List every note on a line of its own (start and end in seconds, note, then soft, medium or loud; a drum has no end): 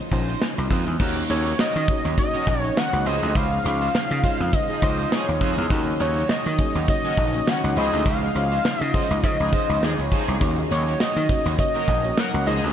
0.00 0.99 C#3 medium
0.00 0.99 F3 medium
0.00 0.99 D#4 medium
0.12 0.34 A#1 medium
0.12 0.27 F3 medium
0.12 0.28 G#3 medium
0.12 0.27 C#4 medium
0.12 0.27 D#4 medium
0.12 0.28 D#4 loud
0.12 0.27 F4 loud
0.12 0.27 C5 loud
0.12 kick medium
0.12 closed hi-hat medium
0.28 0.42 G#3 soft
0.28 0.42 D#4 soft
0.28 0.42 F4 medium
0.28 0.42 C5 medium
0.28 closed hi-hat medium
0.41 0.57 G#5 medium
0.41 snare loud
0.41 clap loud
0.57 0.68 C2 medium
0.57 0.70 A#5 medium
0.57 muted clean electric guitar stroke soft
0.57 closed hi-hat medium
0.70 0.83 F2 medium
0.70 0.91 G#3 medium
0.70 0.87 D#4 medium
0.70 0.86 F4 medium
0.70 0.86 C5 medium
0.70 0.86 C6 medium
0.70 kick medium
0.70 open hi-hat medium
0.87 0.97 E2 medium
0.87 1.15 G#5 medium
0.87 muted clean electric guitar stroke soft
0.87 closed hi-hat medium
1.00 1.23 D#2 loud
1.00 3.04 C#3 medium
1.00 3.04 F#3 medium
1.00 1.42 A#3 medium
1.00 1.21 C#4 medium
1.00 1.42 C#4 medium
1.00 12.73 D#4 loud
1.00 1.42 D#4 medium
1.00 1.17 F#4 medium
1.00 1.42 F#4 medium
1.00 1.16 A#4 medium
1.00 1.42 C#5 medium
1.00 1.16 C#5 medium
1.00 kick loud
1.00 crash loud
1.16 muted clean electric guitar stroke soft
1.16 closed hi-hat soft
1.29 1.52 D#2 loud
1.29 1.46 C#4 medium
1.29 1.45 F#4 medium
1.29 1.45 A#4 medium
1.29 1.57 C#5 medium
1.29 1.45 D#5 medium
1.29 closed hi-hat medium
1.46 1.57 C#4 soft
1.46 1.58 F#4 medium
1.46 1.58 A#4 medium
1.46 1.58 C#5 medium
1.46 closed hi-hat medium
1.58 1.79 C#4 medium
1.58 1.75 F#4 medium
1.58 1.74 A#4 medium
1.58 1.74 C#5 medium
1.58 2.14 D#5 loud
1.58 muted slap bass stroke soft
1.58 snare loud
1.58 clap medium
1.75 1.85 D#3 loud
1.75 muted clean electric guitar stroke soft
1.75 closed hi-hat medium
1.88 2.03 A#3 medium
1.88 2.03 C#4 medium
1.88 2.03 D#4 medium
1.88 2.04 F#4 medium
1.88 2.04 C#5 medium
1.88 muted clean electric guitar stroke soft
1.88 kick loud
1.88 closed hi-hat medium
2.05 2.15 D#2 medium
2.05 2.16 C#4 medium
2.05 2.17 F#4 medium
2.05 2.17 A#4 medium
2.05 2.17 C#5 medium
2.05 closed hi-hat soft
2.17 2.39 A#3 medium
2.17 2.39 C#4 medium
2.17 2.39 D#4 medium
2.17 2.39 F#4 medium
2.17 2.39 C#5 medium
2.17 2.61 D#5 loud
2.17 muted clean electric guitar stroke soft
2.17 kick loud
2.17 closed hi-hat loud
2.34 2.45 D#3 medium
2.34 2.45 C#4 medium
2.34 2.46 F#4 medium
2.34 2.45 F#4 medium
2.34 2.46 A#4 medium
2.34 2.47 C#5 medium
2.34 closed hi-hat medium
2.46 2.70 A#1 medium
2.46 2.63 C#4 medium
2.46 2.63 F#4 medium
2.46 2.62 A#4 medium
2.46 2.62 C#5 medium
2.46 kick medium
2.46 closed hi-hat medium
2.61 2.75 A#3 medium
2.61 2.75 C#4 medium
2.61 2.76 D#4 medium
2.61 2.76 F#4 medium
2.61 2.79 C#5 loud
2.61 2.76 C#5 medium
2.61 muted clean electric guitar stroke soft
2.61 closed hi-hat medium
2.76 2.90 D#3 loud
2.76 2.90 C#4 medium
2.76 2.90 F#4 loud
2.76 3.08 F#5 loud
2.76 muted clean electric guitar stroke soft
2.76 snare loud
2.76 clap medium
2.93 3.03 C#2 medium
2.93 3.06 A#3 medium
2.93 3.05 C#4 medium
2.93 3.05 D#4 medium
2.93 3.06 F#4 medium
2.93 3.06 C#5 medium
2.93 muted clean electric guitar stroke medium
2.93 closed hi-hat medium
3.05 3.19 C#2 medium
3.05 5.68 C#3 medium
3.05 3.30 F3 loud
3.05 5.68 F3 medium
3.05 3.22 G#3 medium
3.05 3.54 G#3 medium
3.05 3.54 C#4 medium
3.05 3.31 D#4 medium
3.05 3.22 D#4 medium
3.05 3.54 D#4 medium
3.05 3.21 F4 medium
3.05 3.55 F4 medium
3.05 3.30 G#4 loud
3.05 3.55 C5 medium
3.05 3.21 C5 medium
3.05 3.37 D#5 loud
3.05 closed hi-hat medium
3.22 3.32 D2 medium
3.22 3.34 G#3 medium
3.22 3.35 D#4 medium
3.22 3.35 F4 medium
3.22 3.35 C5 medium
3.22 closed hi-hat medium
3.35 3.58 C#2 loud
3.35 3.56 G#3 medium
3.35 3.52 D#4 medium
3.35 3.51 F4 loud
3.35 3.51 C5 loud
3.35 4.55 F5 loud
3.35 kick loud
3.35 closed hi-hat loud
3.52 muted clean electric guitar stroke soft
3.52 closed hi-hat soft
3.65 3.87 C#2 loud
3.65 3.92 G#3 medium
3.65 3.92 C#4 medium
3.65 3.92 D#4 medium
3.65 3.92 F4 medium
3.65 3.92 C5 medium
3.65 muted clean electric guitar stroke soft
3.65 closed hi-hat medium
3.81 3.95 G#3 medium
3.81 3.95 D#4 medium
3.81 3.95 F4 medium
3.81 3.95 C5 medium
3.81 closed hi-hat medium
3.94 muted slap bass stroke medium
3.94 snare loud
3.94 clap medium
4.11 4.21 C#3 loud
4.11 muted clean electric guitar stroke soft
4.11 closed hi-hat medium
4.23 4.44 G#3 medium
4.23 4.39 G#3 loud
4.23 4.39 C#4 medium
4.23 4.39 D#4 loud
4.23 4.40 D#4 loud
4.23 4.39 F4 medium
4.23 4.40 F4 medium
4.23 4.39 C5 loud
4.23 4.39 C5 medium
4.23 kick loud
4.23 closed hi-hat medium
4.40 4.50 F2 medium
4.40 muted clean electric guitar stroke medium
4.40 closed hi-hat medium
4.53 4.68 G#3 medium
4.53 4.68 C#4 medium
4.53 4.68 D#4 medium
4.53 4.68 F4 medium
4.53 4.69 C5 medium
4.53 5.15 D#5 loud
4.53 muted clean electric guitar stroke medium
4.53 kick loud
4.53 closed hi-hat loud
4.69 4.80 F3 medium
4.69 4.80 D#4 medium
4.69 4.80 G#4 medium
4.69 muted clean electric guitar stroke medium
4.69 closed hi-hat soft
4.82 5.05 C#2 medium
4.82 5.24 G#3 medium
4.82 4.99 G#3 loud
4.82 5.24 C#4 medium
4.82 5.24 D#4 medium
4.82 4.98 D#4 medium
4.82 5.25 F4 medium
4.82 4.98 F4 loud
4.82 5.25 C5 medium
4.82 4.98 C5 loud
4.82 kick medium
4.82 closed hi-hat medium
4.99 5.13 G#3 medium
4.99 5.13 D#4 medium
4.99 5.13 F4 medium
4.99 5.12 C5 medium
4.99 closed hi-hat medium
5.11 5.26 F3 loud
5.11 5.25 D#4 loud
5.11 5.25 G#4 loud
5.11 5.58 C#5 medium
5.11 snare loud
5.11 clap medium
5.28 5.38 D#2 loud
5.28 muted clean electric guitar stroke medium
5.28 closed hi-hat medium
5.41 5.54 F2 medium
5.41 5.66 F3 loud
5.41 5.62 G#3 medium
5.41 5.66 D#4 loud
5.41 5.57 D#4 medium
5.41 5.57 F4 medium
5.41 5.66 G#4 loud
5.41 5.56 C5 medium
5.41 kick medium
5.41 closed hi-hat medium
5.57 5.68 E2 medium
5.57 muted clean electric guitar stroke soft
5.57 closed hi-hat medium
5.70 5.93 D#2 loud
5.70 7.75 C#3 medium
5.70 7.74 F#3 medium
5.70 5.91 A#3 medium
5.70 6.12 A#3 medium
5.70 6.12 C#4 medium
5.70 5.87 D#4 loud
5.70 6.13 D#4 medium
5.70 5.87 F#4 medium
5.70 6.13 F#4 medium
5.70 5.86 C#5 loud
5.70 6.13 C#5 loud
5.70 kick loud
5.70 closed hi-hat loud
5.87 muted clean electric guitar stroke medium
5.87 closed hi-hat soft
6.00 6.23 D#2 loud
6.00 6.17 A#3 medium
6.00 6.17 D#4 medium
6.00 6.16 F#4 medium
6.00 6.28 C#5 loud
6.00 6.16 D#5 medium
6.00 closed hi-hat loud
6.16 6.29 A#3 medium
6.16 6.29 D#4 medium
6.16 6.29 F#4 medium
6.16 6.30 C#5 medium
6.16 closed hi-hat medium
6.29 6.50 A#3 medium
6.29 6.46 D#4 medium
6.29 6.46 F#4 medium
6.29 6.45 C#5 medium
6.29 6.85 D#5 loud
6.29 muted slap bass stroke soft
6.29 snare loud
6.29 clap loud
6.46 6.56 D#3 loud
6.46 muted clean electric guitar stroke soft
6.46 closed hi-hat medium
6.58 6.74 A#3 medium
6.58 6.74 C#4 medium
6.58 6.74 D#4 medium
6.58 6.74 F#4 medium
6.58 6.74 G#4 medium
6.58 muted clean electric guitar stroke soft
6.58 kick loud
6.58 closed hi-hat medium
6.75 6.85 D#2 medium
6.75 6.87 A#3 soft
6.75 6.88 D#4 medium
6.75 6.88 F#4 medium
6.75 6.88 C#5 medium
6.75 closed hi-hat medium
6.88 7.10 A#3 medium
6.88 7.10 C#4 medium
6.88 7.10 D#4 medium
6.88 7.10 F#4 medium
6.88 7.10 C#5 medium
6.88 7.50 D#5 loud
6.88 muted clean electric guitar stroke soft
6.88 kick loud
6.88 closed hi-hat loud
7.04 7.15 D#3 medium
7.04 7.17 A#3 medium
7.04 7.15 C#4 medium
7.04 7.17 D#4 medium
7.04 7.16 F#4 medium
7.04 7.17 F#4 medium
7.04 7.18 C#5 medium
7.04 closed hi-hat medium
7.17 7.40 A#1 loud
7.17 7.35 A#3 medium
7.17 7.34 D#4 medium
7.17 7.34 F#4 medium
7.17 7.33 C#5 medium
7.17 kick medium
7.17 closed hi-hat medium
7.34 7.46 A#3 medium
7.34 7.46 C#4 medium
7.34 7.46 D#4 medium
7.34 7.46 F#4 medium
7.34 7.46 C#5 medium
7.34 muted clean electric guitar stroke soft
7.34 closed hi-hat medium
7.47 7.61 D#3 loud
7.47 7.61 C#4 loud
7.47 7.61 F#4 loud
7.47 7.77 F#5 loud
7.47 muted clean electric guitar stroke soft
7.47 snare loud
7.47 clap medium
7.63 7.74 C#2 medium
7.63 7.76 A#3 medium
7.63 7.75 C#4 medium
7.63 7.75 D#4 medium
7.63 7.77 F#4 medium
7.63 7.77 C#5 medium
7.63 muted clean electric guitar stroke soft
7.63 closed hi-hat medium
7.76 7.89 C#2 medium
7.76 10.39 C#3 medium
7.76 10.38 F3 medium
7.76 8.01 F3 medium
7.76 7.93 G#3 medium
7.76 8.25 G#3 medium
7.76 8.25 C#4 medium
7.76 8.01 D#4 medium
7.76 7.93 D#4 medium
7.76 8.25 D#4 medium
7.76 7.92 F4 medium
7.76 8.25 F4 medium
7.76 8.01 G#4 loud
7.76 8.25 C5 medium
7.76 7.92 C5 loud
7.76 8.04 D#5 loud
7.76 closed hi-hat medium
7.93 8.03 D2 medium
7.93 8.04 G#3 medium
7.93 8.05 D#4 medium
7.93 8.05 F4 medium
7.93 8.06 C5 medium
7.93 closed hi-hat medium
8.06 8.28 C#2 loud
8.06 8.26 G#3 medium
8.06 8.22 D#4 medium
8.06 8.22 F4 medium
8.06 8.21 C5 loud
8.06 8.84 F5 loud
8.06 kick loud
8.06 closed hi-hat loud
8.22 muted clean electric guitar stroke soft
8.22 closed hi-hat soft
8.35 8.58 C#2 loud
8.35 8.62 G#3 medium
8.35 8.63 C#4 medium
8.35 8.63 D#4 medium
8.35 8.63 F4 medium
8.35 8.63 C5 medium
8.35 muted clean electric guitar stroke soft
8.35 closed hi-hat medium
8.52 8.66 G#3 medium
8.52 8.66 D#4 medium
8.52 8.66 F4 medium
8.52 8.65 C5 medium
8.52 closed hi-hat medium
8.65 muted slap bass stroke soft
8.65 snare loud
8.65 clap loud
8.81 8.91 C#3 loud
8.81 9.25 D#5 loud
8.81 muted clean electric guitar stroke soft
8.81 closed hi-hat medium
8.94 9.15 G#3 medium
8.94 9.09 G#3 loud
8.94 9.09 C#4 medium
8.94 9.09 D#4 medium
8.94 9.10 D#4 medium
8.94 9.09 F4 medium
8.94 9.10 F4 medium
8.94 9.10 C5 loud
8.94 9.09 C5 medium
8.94 kick loud
8.94 open hi-hat medium
9.10 9.20 C#2 medium
9.10 muted clean electric guitar stroke soft
9.10 closed hi-hat medium
9.23 9.36 C#3 loud
9.23 9.38 G#3 medium
9.23 9.38 C#4 medium
9.23 9.39 D#4 medium
9.23 9.39 F4 medium
9.23 9.39 C5 medium
9.23 9.85 D#5 loud
9.23 muted clean electric guitar stroke medium
9.23 kick loud
9.23 closed hi-hat loud
9.40 9.50 C#2 loud
9.40 9.51 F3 medium
9.40 9.51 D#4 medium
9.40 9.51 G#4 medium
9.40 muted clean electric guitar stroke soft
9.40 closed hi-hat medium
9.52 9.94 G#3 medium
9.52 9.69 G#3 medium
9.52 9.94 C#4 medium
9.52 9.95 D#4 medium
9.52 9.69 D#4 medium
9.52 9.95 F4 medium
9.52 9.68 F4 medium
9.52 9.95 C5 medium
9.52 9.68 C5 loud
9.52 kick medium
9.52 closed hi-hat medium
9.69 9.79 C#2 medium
9.69 9.84 G#3 medium
9.69 9.83 D#4 medium
9.69 9.83 F4 medium
9.69 9.83 C5 medium
9.69 closed hi-hat medium
9.82 9.95 D#2 medium
9.82 9.96 F3 loud
9.82 9.96 D#4 loud
9.82 9.97 G#4 loud
9.82 10.29 C#5 medium
9.82 snare loud
9.82 clap medium
9.98 10.09 C#2 medium
9.98 muted clean electric guitar stroke medium
9.98 closed hi-hat medium
10.12 10.37 F3 medium
10.12 10.32 G#3 medium
10.12 10.28 D#4 medium
10.12 10.37 D#4 medium
10.12 10.27 F4 medium
10.12 10.37 G#4 loud
10.12 10.27 C5 medium
10.12 kick medium
10.12 open hi-hat medium
10.28 10.38 C2 medium
10.28 muted clean electric guitar stroke medium
10.28 closed hi-hat medium
10.41 10.64 D#2 loud
10.41 12.45 C#3 medium
10.41 12.45 F#3 medium
10.41 10.83 A#3 medium
10.41 10.62 A#3 medium
10.41 10.83 C#4 medium
10.41 10.83 D#4 medium
10.41 10.57 D#4 medium
10.41 10.83 F#4 medium
10.41 10.57 F#4 medium
10.41 10.83 C#5 medium
10.41 10.56 C#5 loud
10.41 kick loud
10.41 closed hi-hat loud
10.57 muted clean electric guitar stroke soft
10.57 closed hi-hat soft
10.70 10.93 D#2 loud
10.70 10.86 A#3 medium
10.70 10.86 D#4 medium
10.70 10.86 F#4 medium
10.70 10.98 C#5 medium
10.70 10.86 D#5 medium
10.70 closed hi-hat medium
10.86 10.98 A#3 soft
10.86 10.99 D#4 medium
10.86 10.99 F#4 medium
10.86 11.00 C#5 medium
10.86 closed hi-hat medium
11.00 11.20 A#3 medium
11.00 11.16 D#4 medium
11.00 11.16 F#4 medium
11.00 11.15 C#5 medium
11.00 11.55 D#5 medium
11.00 muted slap bass stroke soft
11.00 snare loud
11.00 clap medium
11.16 11.26 D#3 loud
11.16 muted clean electric guitar stroke soft
11.16 closed hi-hat medium
11.29 11.44 A#3 medium
11.29 11.44 C#4 medium
11.29 11.44 D#4 medium
11.29 11.44 F#4 medium
11.29 11.45 C#5 medium
11.29 muted clean electric guitar stroke soft
11.29 kick loud
11.29 closed hi-hat medium
11.45 11.56 D#2 medium
11.45 11.57 A#3 medium
11.45 11.57 D#4 medium
11.45 11.57 F#4 medium
11.45 11.58 C#5 medium
11.45 closed hi-hat medium
11.58 11.80 A#3 medium
11.58 11.80 C#4 medium
11.58 11.80 D#4 medium
11.58 11.80 F#4 medium
11.58 11.80 C#5 medium
11.58 12.20 D#5 loud
11.58 muted clean electric guitar stroke medium
11.58 kick loud
11.58 closed hi-hat loud
11.74 11.86 F#3 medium
11.74 11.86 A#3 medium
11.74 11.86 D#4 medium
11.74 11.87 F#4 medium
11.74 11.86 A#4 medium
11.74 11.87 C#5 medium
11.74 closed hi-hat medium
11.87 12.11 A#1 medium
11.87 12.05 A#3 medium
11.87 12.04 D#4 medium
11.87 12.03 F#4 medium
11.87 12.03 C#5 medium
11.87 kick medium
11.87 closed hi-hat medium
12.04 12.16 A#3 medium
12.04 12.16 C#4 medium
12.04 12.17 D#4 medium
12.04 12.17 F#4 medium
12.04 12.17 C#5 medium
12.04 muted clean electric guitar stroke soft
12.04 closed hi-hat medium
12.17 12.31 F#3 loud
12.17 12.32 D#4 loud
12.17 12.31 A#4 loud
12.17 12.46 F#5 loud
12.17 muted clean electric guitar stroke soft
12.17 snare loud
12.17 clap medium
12.33 12.44 C#2 medium
12.33 12.47 A#3 medium
12.33 12.46 C#4 medium
12.33 12.46 D#4 medium
12.33 12.47 F#4 medium
12.33 12.47 C#5 medium
12.33 muted clean electric guitar stroke medium
12.33 closed hi-hat medium
12.46 12.60 C#2 loud
12.46 12.73 C#3 medium
12.46 12.73 F3 medium
12.46 12.64 G#3 medium
12.46 12.73 G#3 medium
12.46 12.73 C#4 medium
12.46 12.73 D#4 loud
12.46 12.63 D#4 medium
12.46 12.73 D#4 medium
12.46 12.63 F4 medium
12.46 12.73 F4 medium
12.46 12.73 G#4 loud
12.46 12.62 C5 medium
12.46 12.73 C5 medium
12.46 12.60 D#5 loud
12.46 closed hi-hat medium
12.63 12.73 D2 loud
12.63 12.73 G#3 medium
12.63 12.73 D#4 medium
12.63 12.73 F4 medium
12.63 12.73 C5 medium
12.63 closed hi-hat medium